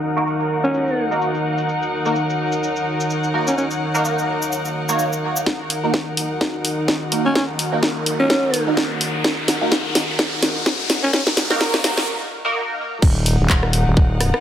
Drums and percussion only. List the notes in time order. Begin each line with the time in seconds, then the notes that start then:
0.17 cabasa
0.27 cabasa
0.40 cabasa
0.64 cabasa
0.74 cabasa
0.87 cabasa
1.12 cabasa
1.21 cabasa
1.34 cabasa
1.58 cabasa
1.69 cabasa
1.82 cabasa
2.05 cabasa
2.15 cabasa
2.30 cabasa
2.52 cabasa
2.63 cabasa
2.76 cabasa
3.00 cabasa
3.10 cabasa
3.24 cabasa
3.47 cabasa
3.58 cabasa
3.71 cabasa
3.95 cabasa
4.05 cabasa
4.18 cabasa
4.42 cabasa
4.52 cabasa
4.65 cabasa
4.89 cabasa
4.99 cabasa
5.13 cabasa
5.36 cabasa
5.46 kick, snare
5.70 open hi-hat
5.94 kick, snare
6.17 open hi-hat
6.41 kick, snare
6.65 open hi-hat
6.88 kick, snare
7.12 open hi-hat
7.35 kick, snare
7.59 open hi-hat
7.83 kick, snare
8.06 open hi-hat
8.30 kick, snare
8.54 open hi-hat
8.77 kick, snare
9.01 open hi-hat
9.24 kick, snare
9.48 snare, open hi-hat
9.72 kick, snare
9.95 snare, open hi-hat
10.19 kick, snare
10.43 snare, open hi-hat
10.66 kick, snare
10.90 snare, open hi-hat
11.13 kick, snare
11.27 snare
11.37 snare, open hi-hat
11.50 snare
11.61 kick, snare
11.74 snare
11.84 snare, open hi-hat
11.97 snare
13.02 kick, crash
13.26 open hi-hat
13.50 kick, clap
13.63 cross-stick
13.73 open hi-hat
13.97 kick
14.21 cross-stick, open hi-hat
14.34 cross-stick